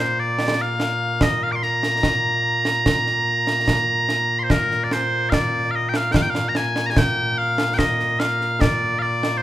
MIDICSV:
0, 0, Header, 1, 3, 480
1, 0, Start_track
1, 0, Key_signature, -2, "major"
1, 0, Tempo, 821918
1, 1188, Time_signature, 3, 2, 24, 8
1, 5504, End_track
2, 0, Start_track
2, 0, Title_t, "Bagpipes"
2, 0, Program_c, 0, 109
2, 0, Note_on_c, 0, 46, 89
2, 0, Note_on_c, 0, 58, 89
2, 0, Note_on_c, 0, 72, 82
2, 114, Note_off_c, 0, 72, 0
2, 114, Note_on_c, 0, 74, 77
2, 359, Note_off_c, 0, 74, 0
2, 359, Note_on_c, 0, 77, 95
2, 718, Note_off_c, 0, 77, 0
2, 718, Note_on_c, 0, 75, 94
2, 837, Note_off_c, 0, 75, 0
2, 837, Note_on_c, 0, 77, 89
2, 887, Note_off_c, 0, 77, 0
2, 887, Note_on_c, 0, 86, 75
2, 907, Note_off_c, 0, 86, 0
2, 907, Note_on_c, 0, 84, 75
2, 952, Note_off_c, 0, 84, 0
2, 952, Note_on_c, 0, 82, 100
2, 2564, Note_off_c, 0, 82, 0
2, 2564, Note_on_c, 0, 84, 66
2, 2590, Note_off_c, 0, 84, 0
2, 2590, Note_on_c, 0, 72, 66
2, 2633, Note_off_c, 0, 72, 0
2, 2633, Note_on_c, 0, 70, 92
2, 2825, Note_off_c, 0, 70, 0
2, 2825, Note_on_c, 0, 74, 59
2, 2877, Note_off_c, 0, 74, 0
2, 2877, Note_on_c, 0, 72, 86
2, 3093, Note_off_c, 0, 72, 0
2, 3093, Note_on_c, 0, 77, 84
2, 3117, Note_off_c, 0, 77, 0
2, 3117, Note_on_c, 0, 74, 84
2, 3335, Note_off_c, 0, 74, 0
2, 3335, Note_on_c, 0, 77, 82
2, 3361, Note_off_c, 0, 77, 0
2, 3361, Note_on_c, 0, 75, 82
2, 3439, Note_off_c, 0, 75, 0
2, 3439, Note_on_c, 0, 79, 62
2, 3482, Note_off_c, 0, 79, 0
2, 3482, Note_on_c, 0, 77, 85
2, 3573, Note_off_c, 0, 77, 0
2, 3573, Note_on_c, 0, 79, 92
2, 3599, Note_off_c, 0, 79, 0
2, 3599, Note_on_c, 0, 77, 92
2, 3633, Note_off_c, 0, 77, 0
2, 3633, Note_on_c, 0, 79, 78
2, 3678, Note_off_c, 0, 79, 0
2, 3678, Note_on_c, 0, 77, 88
2, 3789, Note_off_c, 0, 77, 0
2, 3789, Note_on_c, 0, 82, 71
2, 3834, Note_off_c, 0, 82, 0
2, 3834, Note_on_c, 0, 80, 89
2, 4008, Note_off_c, 0, 80, 0
2, 4008, Note_on_c, 0, 82, 83
2, 4030, Note_off_c, 0, 82, 0
2, 4030, Note_on_c, 0, 80, 83
2, 4076, Note_off_c, 0, 80, 0
2, 4076, Note_on_c, 0, 79, 101
2, 4311, Note_off_c, 0, 79, 0
2, 4311, Note_on_c, 0, 77, 91
2, 4520, Note_off_c, 0, 77, 0
2, 4520, Note_on_c, 0, 79, 87
2, 4545, Note_on_c, 0, 75, 87
2, 4546, Note_off_c, 0, 79, 0
2, 4786, Note_off_c, 0, 75, 0
2, 4786, Note_on_c, 0, 77, 88
2, 5028, Note_off_c, 0, 77, 0
2, 5028, Note_on_c, 0, 74, 87
2, 5250, Note_off_c, 0, 74, 0
2, 5250, Note_on_c, 0, 77, 88
2, 5269, Note_off_c, 0, 77, 0
2, 5269, Note_on_c, 0, 74, 88
2, 5474, Note_off_c, 0, 74, 0
2, 5474, Note_on_c, 0, 72, 75
2, 5504, Note_off_c, 0, 46, 0
2, 5504, Note_off_c, 0, 58, 0
2, 5504, Note_off_c, 0, 72, 0
2, 5504, End_track
3, 0, Start_track
3, 0, Title_t, "Drums"
3, 225, Note_on_c, 9, 38, 92
3, 283, Note_off_c, 9, 38, 0
3, 466, Note_on_c, 9, 38, 75
3, 524, Note_off_c, 9, 38, 0
3, 706, Note_on_c, 9, 35, 58
3, 706, Note_on_c, 9, 38, 94
3, 764, Note_off_c, 9, 35, 0
3, 764, Note_off_c, 9, 38, 0
3, 948, Note_on_c, 9, 38, 23
3, 1007, Note_off_c, 9, 38, 0
3, 1070, Note_on_c, 9, 38, 66
3, 1128, Note_off_c, 9, 38, 0
3, 1187, Note_on_c, 9, 35, 52
3, 1187, Note_on_c, 9, 38, 84
3, 1245, Note_off_c, 9, 35, 0
3, 1245, Note_off_c, 9, 38, 0
3, 1548, Note_on_c, 9, 38, 70
3, 1607, Note_off_c, 9, 38, 0
3, 1670, Note_on_c, 9, 35, 46
3, 1670, Note_on_c, 9, 38, 86
3, 1729, Note_off_c, 9, 35, 0
3, 1729, Note_off_c, 9, 38, 0
3, 1790, Note_on_c, 9, 38, 25
3, 1848, Note_off_c, 9, 38, 0
3, 2028, Note_on_c, 9, 38, 62
3, 2086, Note_off_c, 9, 38, 0
3, 2147, Note_on_c, 9, 35, 51
3, 2147, Note_on_c, 9, 38, 86
3, 2205, Note_off_c, 9, 35, 0
3, 2205, Note_off_c, 9, 38, 0
3, 2387, Note_on_c, 9, 38, 59
3, 2446, Note_off_c, 9, 38, 0
3, 2628, Note_on_c, 9, 35, 56
3, 2628, Note_on_c, 9, 38, 90
3, 2686, Note_off_c, 9, 35, 0
3, 2686, Note_off_c, 9, 38, 0
3, 2751, Note_on_c, 9, 38, 26
3, 2809, Note_off_c, 9, 38, 0
3, 2870, Note_on_c, 9, 38, 73
3, 2928, Note_off_c, 9, 38, 0
3, 3108, Note_on_c, 9, 35, 52
3, 3108, Note_on_c, 9, 38, 93
3, 3166, Note_off_c, 9, 35, 0
3, 3166, Note_off_c, 9, 38, 0
3, 3467, Note_on_c, 9, 38, 75
3, 3526, Note_off_c, 9, 38, 0
3, 3587, Note_on_c, 9, 35, 62
3, 3587, Note_on_c, 9, 38, 100
3, 3645, Note_off_c, 9, 35, 0
3, 3645, Note_off_c, 9, 38, 0
3, 3708, Note_on_c, 9, 38, 67
3, 3766, Note_off_c, 9, 38, 0
3, 3825, Note_on_c, 9, 38, 73
3, 3883, Note_off_c, 9, 38, 0
3, 3947, Note_on_c, 9, 38, 68
3, 4005, Note_off_c, 9, 38, 0
3, 4068, Note_on_c, 9, 35, 60
3, 4068, Note_on_c, 9, 38, 100
3, 4126, Note_off_c, 9, 35, 0
3, 4126, Note_off_c, 9, 38, 0
3, 4428, Note_on_c, 9, 38, 81
3, 4487, Note_off_c, 9, 38, 0
3, 4547, Note_on_c, 9, 35, 55
3, 4547, Note_on_c, 9, 38, 96
3, 4606, Note_off_c, 9, 35, 0
3, 4606, Note_off_c, 9, 38, 0
3, 4669, Note_on_c, 9, 38, 28
3, 4727, Note_off_c, 9, 38, 0
3, 4788, Note_on_c, 9, 38, 83
3, 4846, Note_off_c, 9, 38, 0
3, 4911, Note_on_c, 9, 38, 30
3, 4970, Note_off_c, 9, 38, 0
3, 5031, Note_on_c, 9, 35, 67
3, 5031, Note_on_c, 9, 38, 99
3, 5089, Note_off_c, 9, 35, 0
3, 5089, Note_off_c, 9, 38, 0
3, 5392, Note_on_c, 9, 38, 77
3, 5451, Note_off_c, 9, 38, 0
3, 5504, End_track
0, 0, End_of_file